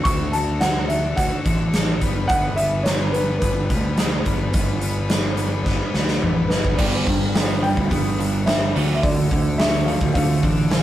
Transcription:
0.04 D2 D3 D4 F#4 A4 C#6, kick, closed hi-hat
0.32 D3 D4 F#4 A4 A5, closed hi-hat
0.61 D3 D4 F#4 A4 F#5, snare, closed hi-hat
0.88 D3 D4 F#4 A4 E5, closed hi-hat
1.17 D2 D3 D4 F#4 F#5, kick, closed hi-hat
1.21 A4
1.45 A1 D3 D4 F#4 A4, kick, closed hi-hat
1.74 D3 D4 F#4 A4, snare, closed hi-hat
2.01 G1 G3 B3 D4 B4, kick, closed hi-hat
2.28 G1 G3 B3 D4 B4 F#5, kick, closed hi-hat
2.56 G3 B3 D4 B4 E5, closed hi-hat
2.83 G3 B3 D4 B4 C#5, snare, closed hi-hat
3.12 G3 B3 D4 B4, closed hi-hat
3.16 B4
3.39 G1 G3 B3 D4 B4, kick, closed hi-hat
3.43 B4
3.70 D2 G3 B3 D4 B4, kick, closed hi-hat
3.98 G3 B3 D4 B4, snare, closed hi-hat
4.26 G1 G3 B3 D4 B4, kick, closed hi-hat
4.54 G1 G3 B3 D4 B4, kick, closed hi-hat
4.82 G3 B3 D4 B4, closed hi-hat
5.10 G3 B3 D4 B4, snare, closed hi-hat
5.37 G3 B3 D4 B4, closed hi-hat
5.66 G1 G3 B3 D4 B4, kick, snare
5.94 D2 G3 B3 D4 B4, snare
6.08 snare
6.22 A1 G3 B3 D4 B4, mid tom
6.48 G1 G3 D4 B4, snare
6.52 B3 B4
6.65 kick
6.77 G1 G2 G3 B3 D4 D5, kick, crash
7.07 G1 G3 D4, kick, open hi-hat
7.34 G3 B3 D4, snare, open hi-hat
7.62 G3 D4 G5, open hi-hat
7.77 D2, kick
7.91 G1 G3 B3 D4, kick, open hi-hat
8.19 G3 D4, open hi-hat
8.46 G3 D4 E5, snare, open hi-hat
8.75 D2 D3 D4 F4, open hi-hat
8.95 E5
9.02 D3 D4 D5, kick, open hi-hat
9.31 D2 D3 D4, kick, open hi-hat
9.58 D3 A3 D4 E5, snare, open hi-hat
9.86 D3 F3 D4 F5, open hi-hat
10.01 D2, kick
10.14 D2 D3 A3 D4 F5, kick, open hi-hat
10.43 A1 D3 D4, kick, open hi-hat
10.71 D3 F3 D4, snare, open hi-hat

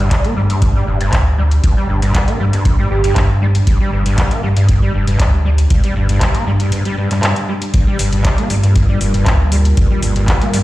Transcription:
Already playing: G1 D4 G4 C5 F5
0.11 G3, kick, clap, closed hi-hat
0.24 A#3, closed hi-hat
0.36 G2 G3
0.50 G2, closed hi-hat
0.62 G2, kick, closed hi-hat
0.75 G3
0.87 F1 G2
1.01 G2, closed hi-hat
1.13 D2 G2, kick, clap, closed hi-hat
1.38 G3
1.51 closed hi-hat
1.64 G1 G2, kick, closed hi-hat
1.77 G3
1.89 G1 G2
2.02 G2, closed hi-hat
2.14 G3, kick, clap, closed hi-hat
2.28 A#3, closed hi-hat
2.40 G2 G3
2.53 G2, closed hi-hat
2.65 G2, kick, closed hi-hat
2.79 G3
2.91 G1 G2 G4
3.04 G2 G4, closed hi-hat
3.16 G2, kick, clap, closed hi-hat
3.42 G3
3.55 closed hi-hat
3.67 G1 G2, kick, closed hi-hat
3.80 G3
3.92 G1 G2
4.06 G2, closed hi-hat
4.18 G3, kick, clap, closed hi-hat
4.31 A#3, closed hi-hat
4.43 G2 G3
4.57 G2, closed hi-hat
4.69 G2, kick, closed hi-hat
4.82 G3
4.94 F1 G2
5.07 G2, closed hi-hat
5.19 D2, kick, clap, closed hi-hat
5.45 G3
5.58 closed hi-hat
5.70 G1 G2, kick, closed hi-hat
5.84 G3, closed hi-hat
5.96 G1 G2
6.09 G2, closed hi-hat
6.21 G3 G5, kick, clap, closed hi-hat
6.35 A#3, closed hi-hat
6.47 G2 G3
6.60 G2, closed hi-hat
6.72 G2, closed hi-hat
6.85 G3, closed hi-hat
6.98 G2
7.11 G2, clap, closed hi-hat
7.23 G2, clap, closed hi-hat
7.36 closed hi-hat
7.48 G3
7.62 closed hi-hat
7.74 G1 G2 G3 F4 A#4, kick, closed hi-hat
7.87 G3 A#4
7.99 G1 G2, open hi-hat
8.13 G2, closed hi-hat
8.25 G3, kick, clap, closed hi-hat
8.38 A#3, closed hi-hat
8.50 G2 G3, open hi-hat
8.63 G2, closed hi-hat
8.75 G2, kick, closed hi-hat
8.89 G3
9.01 F1 G2, open hi-hat
9.14 G2, closed hi-hat
9.26 D2 G2, kick, clap, closed hi-hat
9.52 G3, open hi-hat
9.65 closed hi-hat
9.77 G1 G2, kick, closed hi-hat
9.91 G3
10.02 G1 G2, open hi-hat
10.16 G2, closed hi-hat
10.28 G3, kick, clap, closed hi-hat
10.41 A#3, closed hi-hat
10.53 G2 G3, open hi-hat

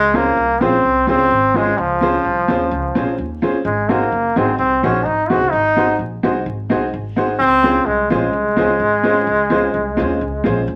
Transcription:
Already playing: C#2 G#3
0.14 A#3 C4 C#4 F4 G#4 C5
0.37 C2
0.61 A#1 C4 C#4 F4 G#4 C5
0.84 C2
1.07 C#2 C4 C#4 F4 G#4 C5
1.31 G#1
1.54 G#3 C4 C#4 F4 G#4 C5
1.78 C#2 F3
2.01 C4 C#4 F4 G#4 C5
2.25 C2
2.48 D#2 C4 C#4 F4 G#4 C5
2.71 C#2
2.95 A#1 C4 C#4 F4 G#4 C5
3.18 D#2
3.42 C4 C#4 F4 G#4 C5
3.65 G#1 G#3
3.89 A#3 C4 D#4 F#4 G#4 C5
4.12 F#1
4.36 G#1 C4 D#4 F#4 G#4 C5
4.58 C2 C4
4.83 A#1 C4 C#4 D#4 F#4 G#4 C5
5.05 G#1 D#4
5.30 C#2 C4 D#4 F#4 G#4 C5
5.51 G#1 D#4
5.77 C4 D#4 F#4 G#4 C5
5.99 A#1
6.23 C2 C4 D#4 F#4 G#4 C5
6.46 G#1
6.69 C2 C4 D#4 F#4 G#4 C5
6.93 G#1
7.16 C4 D#4 F#4 G#4 C5
7.39 C#2 C4
7.63 C4 C#4 F4 G#4 C5
7.86 C2 G#3
8.10 A#1 G#3 C4 C#4 F4 G#4 C5
8.33 C2
8.57 C#2 C4 C#4 F4 G#4 C5
8.80 G#1
9.03 C4 C#4 F4 G#4 C5
9.27 C#2
9.50 C4 C#4 F4 G#4 C5
9.74 C2
9.97 D#2 C4 C#4 F4 G#4 C5
10.21 C#2
10.44 A#1 C4 C#4 F4 G#4 C5
10.68 D#2

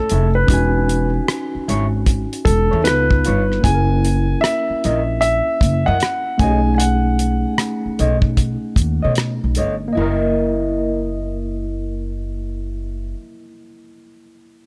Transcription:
Already playing: A3 C#4 E4 A4 G#5
0.09 F1 A3 E4 G#4, closed hi-hat
0.35 B4
0.47 E1 C#4 D#4, kick, closed hi-hat
0.51 F#4 G#5
0.89 closed hi-hat
1.28 cross-stick, closed hi-hat
1.55 muted upright bass stroke
1.68 G#1 E4 G#4 C#5, closed hi-hat
2.06 kick, closed hi-hat
2.33 closed hi-hat
2.45 E1 A4, kick, closed hi-hat
2.71 E2 E4 G#4 C#5
2.84 C#2 B3 D#4 F4 B4, cross-stick, closed hi-hat
3.11 kick
3.25 G1 F4 B4 C#5, closed hi-hat
3.52 cross-stick
3.61 F#1 A#3 C#4 G#5, kick, closed hi-hat
3.65 E4 G#4
3.75 A#4
4.05 closed hi-hat
4.41 E5, cross-stick, closed hi-hat
4.70 muted upright bass stroke
4.84 A#1 E4 A#4 D#5, closed hi-hat
5.21 E5, closed hi-hat
5.61 F#1, kick, closed hi-hat
5.86 F#2 E4 A#4 D#5 F#5
6.00 cross-stick, closed hi-hat
6.38 B1 A3 C#4 A4 G#5, kick, closed hi-hat
6.42 D#4 G4 C#5 D#5
6.51 G#4
6.74 F#5 G#5
6.80 closed hi-hat
7.19 closed hi-hat
7.58 cross-stick, closed hi-hat
7.86 muted upright bass stroke
7.99 B1 A4 C#5 D#5, closed hi-hat
8.22 kick
8.37 kick, closed hi-hat
8.76 D#2, kick, closed hi-hat
9.03 B2 A4 C#5 D#5
9.15 cross-stick, closed hi-hat
9.44 B1
9.55 G1 A4 C#5 D#5, closed hi-hat
9.88 A#3
9.93 E4 D#5
9.97 F#1 E4 A#4 D#5
10.02 A#4

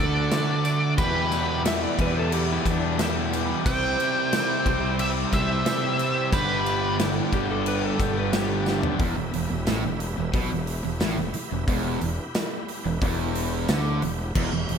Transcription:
Already playing: D3 A3 D4 F#4 A4 D5
0.00 D2 A3 D4 F#4
0.14 A3 D4 F#4
0.30 D3 A3 D4 F#4, snare, tambourine, crash
0.47 A3 D4 F#4
0.64 D3 A3 D4 F#4, tambourine, crash
0.80 A3 D4 F#4
0.97 E2 B2 E3 G3 B3 E4 G4 B4 E5, kick, tambourine, crash
1.01 E4
1.30 E3 G3 B3 G4, snare, tambourine, crash
1.47 E3 G3 B3 G4
1.64 E2 B2 E3 G3 B3 G4, snare, tambourine, crash
1.68 E5
1.84 D5
1.97 E2 E3 G3 B3 E4 G4, kick, crash
2.01 B4
2.14 E3 G3 B3 G4
2.19 A4
2.32 G4, tambourine, crash
2.52 E4
2.64 E2 E3 G3 B3 G4, kick, tambourine, crash
2.70 D4
2.81 E3 G3 B3 G4
2.97 E2 B2 E3 G3 B3 G4, snare, tambourine, crash
3.03 E4
3.15 E3 G3 B3 G4
3.32 E3 G3 B3 G4, tambourine, crash
3.49 E3 G3 B3 G4
3.65 C2 C3 E3 G3 C4 E4 G4 C5 E5 G5, kick, tambourine, crash
3.99 E3 G3 E4 G4, tambourine, crash
4.15 G3 E4 G4
4.32 C3 E3 G3 E4 G4, snare, tambourine, crash
4.65 C2 C3 E3 G3 C4 E4 G4, kick, crash
4.82 G3 E4 G4
4.99 C5 E5, tambourine, crash
5.31 C2 E3 G3 E4 G4 C5 E5, kick, tambourine, crash
5.47 G3 E4 G4
5.64 C3 E3 G3 E4 G4, snare, tambourine, crash
5.81 G3 E4 G4
5.98 E3 G3 E4 G4, tambourine, crash
6.14 G3 E4 G4
6.31 G1 G2 D3 G3 B3 D4 G4 B4 D5, kick, tambourine, crash
6.64 G3 B3 D4 G4, tambourine, crash
6.81 G3 B3 D4 G4
6.98 G2 D3 G3 B3 D4 G4, snare, tambourine, crash
7.02 E4
7.31 G1 G2 D3 G3 B3 D4 G4, kick, tambourine, crash
7.48 G3 B3 D4 G4 A4
7.66 B4, tambourine, crash
7.86 A4
7.98 G1 G3 B3 D4 G4, kick, tambourine, crash
8.14 G3 B3 D4 G4
8.19 B4
8.31 G2 D3 G3 B3 D4 G4, snare, tambourine, crash
8.36 G4
8.48 G3 B3 D4 G4
8.65 G3 B3 D4 G4, snare, tambourine
8.70 A3 B3
8.76 C4 D4
8.81 G3 B3 D4 E4 F4 G4, floor tom
8.86 G4 A4
8.92 B4 C5
8.98 E1 E2 B3 E4 G4 D5 E5, kick, open hi-hat
9.16 E1 E2
9.32 E1 E2, open hi-hat
9.49 E1 E2
9.67 A1 A2, snare, open hi-hat, tambourine
9.84 E1 E2
10.00 open hi-hat
10.17 E1 E2
10.33 B1 B2, kick, open hi-hat
10.51 E1 E2
10.67 open hi-hat
10.85 E1 E2
11.00 A1 A2, snare, open hi-hat, tambourine
11.17 E1 E2
11.34 muted overdriven electric guitar stroke, muted distorted electric guitar stroke, muted fingered electric bass stroke, open hi-hat
11.51 E1 E2
11.67 E1 E2 B3 E4 G4, kick, open hi-hat
12.01 E1 E2, open hi-hat
12.35 snare, open hi-hat, tambourine
12.68 open hi-hat
12.85 E1 E2
13.02 E1 E2, kick, open hi-hat
13.35 open hi-hat
13.68 D2 D3, snare, open hi-hat, tambourine
14.02 E1 E2, open hi-hat
14.35 E1 E2 B3 E4 G4 E5, kick, crash
14.52 E1 E2
14.69 E1 E2, open hi-hat

